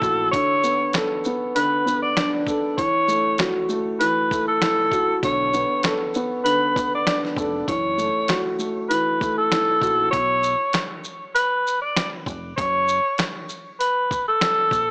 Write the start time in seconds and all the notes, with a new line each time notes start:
Already playing: E3 A3 E4 F#4 A4
0.02 A#1 F#4, kick, shaker
0.32 D3 C#5, kick, closed hi-hat
0.64 B3, shaker
0.93 A4, snare, closed hi-hat
1.25 B3, shaker
1.55 D3 B4, closed hi-hat
1.86 B3, shaker
2.02 D5
2.17 D4, snare, closed hi-hat
2.47 A4, kick, shaker
2.77 E3 C#5, kick, closed hi-hat
3.08 A3, shaker
3.38 F#4, snare, closed hi-hat
3.69 A3, shaker
4.00 E3 B4, closed hi-hat
4.31 A3, kick, shaker
4.48 A4
4.62 E4, snare, closed hi-hat
4.92 F#4, kick, shaker
5.23 B1 D3 C#5, kick, closed hi-hat
5.54 B3, shaker
5.83 A4, snare, closed hi-hat
6.14 B3, shaker
6.44 D3 B4, closed hi-hat
6.76 B3, kick, closed hi-hat, shaker
6.95 D5
7.06 D4, snare, closed hi-hat
7.25 snare
7.37 F1 A4, kick, shaker
7.67 F#1 E3 C#5, kick, closed hi-hat
7.98 A3, shaker
8.28 F#4, snare, closed hi-hat
8.59 A3, shaker
8.89 E3 B4, closed hi-hat
9.20 A3, kick, shaker
9.38 A4
9.52 E4, snare, closed hi-hat
9.81 A#1 F#4, kick, shaker
10.11 B1 C#5, kick, closed hi-hat
10.43 shaker
10.73 snare, closed hi-hat
11.04 shaker
11.35 B4, closed hi-hat
11.67 shaker
11.82 D5
11.96 snare, closed hi-hat
12.26 F1, kick, shaker
12.57 F#1 C#5, kick, closed hi-hat
12.88 shaker
13.18 snare, closed hi-hat
13.49 shaker
13.80 B4, closed hi-hat
14.11 kick, shaker
14.28 A4
14.41 snare, closed hi-hat
14.71 A#1, kick, shaker